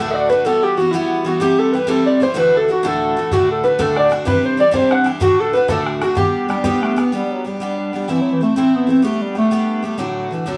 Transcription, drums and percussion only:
3.31 bodhran medium
3.79 bodhran medium
3.96 bodhran medium
4.12 bodhran medium
4.27 bodhran medium
4.74 bodhran medium
4.91 bodhran medium
5.06 bodhran medium
5.21 bodhran medium
5.69 bodhran medium
5.86 bodhran medium
6.02 bodhran medium
6.17 bodhran medium
6.50 bodhran medium
6.64 bodhran medium
6.83 bodhran medium
6.98 bodhran medium

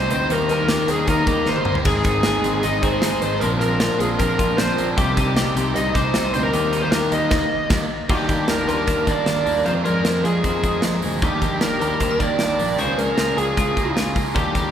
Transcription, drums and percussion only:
0.10 closed hi-hat medium
0.30 closed hi-hat medium
0.49 closed hi-hat medium
0.69 snare loud
0.69 closed hi-hat medium
0.88 closed hi-hat medium
1.07 kick medium
1.07 closed hi-hat medium
1.27 kick medium
1.27 closed hi-hat medium
1.46 snare medium
1.56 high tom medium
1.65 mid tom medium
1.75 floor tom medium
1.85 kick loud
1.85 crash medium
2.04 kick medium
2.04 closed hi-hat medium
2.23 snare loud
2.23 closed hi-hat medium
2.44 closed hi-hat medium
2.63 closed hi-hat medium
2.83 kick medium
2.83 closed hi-hat medium
3.02 snare loud
3.02 closed hi-hat loud
3.22 closed hi-hat medium
3.41 closed hi-hat medium
3.61 closed hi-hat medium
3.80 snare loud
3.80 closed hi-hat medium
4.00 closed hi-hat medium
4.19 kick medium
4.19 closed hi-hat medium
4.39 kick medium
4.39 closed hi-hat medium
4.58 snare loud
4.58 closed hi-hat medium
4.78 closed hi-hat medium
4.98 kick loud
4.98 closed hi-hat medium
5.17 kick medium
5.17 closed hi-hat medium
5.37 snare loud
5.37 closed hi-hat medium
5.57 closed hi-hat medium
5.76 closed hi-hat medium
5.95 kick medium
5.95 snare soft
5.95 closed hi-hat medium
6.14 snare loud
6.14 closed hi-hat medium
6.34 closed hi-hat medium
6.53 closed hi-hat medium
6.73 closed hi-hat medium
6.92 snare loud
6.92 closed hi-hat medium
7.12 closed hi-hat medium
7.31 kick loud
7.31 snare medium
7.31 crash medium
7.70 kick loud
7.70 snare loud
7.70 crash medium
8.09 kick loud
8.09 crash medium
8.29 kick medium
8.29 closed hi-hat medium
8.48 snare loud
8.48 closed hi-hat medium
8.69 closed hi-hat medium
8.87 kick medium
8.87 closed hi-hat medium
9.07 kick medium
9.07 snare soft
9.07 closed hi-hat medium
9.26 snare loud
9.26 closed hi-hat medium
9.46 open hi-hat medium
9.66 closed hi-hat medium
9.86 closed hi-hat medium
10.05 snare loud
10.05 closed hi-hat medium
10.25 closed hi-hat medium
10.44 kick medium
10.44 closed hi-hat medium
10.64 kick medium
10.64 closed hi-hat medium
10.82 snare loud
10.82 closed hi-hat medium
11.02 open hi-hat medium
11.22 kick loud
11.22 closed hi-hat medium
11.42 kick medium
11.42 closed hi-hat medium
11.61 snare loud
11.61 closed hi-hat medium
11.82 closed hi-hat medium
12.00 kick medium
12.00 closed hi-hat medium
12.20 kick medium
12.20 closed hi-hat medium
12.39 snare loud
12.39 closed hi-hat medium
12.59 open hi-hat medium
12.78 closed hi-hat medium
12.99 closed hi-hat medium
13.18 snare loud
13.18 closed hi-hat medium
13.38 closed hi-hat medium
13.57 kick medium
13.57 closed hi-hat medium
13.77 kick medium
13.77 closed hi-hat medium
13.97 snare loud
13.97 closed hi-hat medium
14.16 kick medium
14.16 open hi-hat medium
14.36 kick loud
14.36 closed hi-hat medium
14.55 kick medium
14.55 closed hi-hat medium

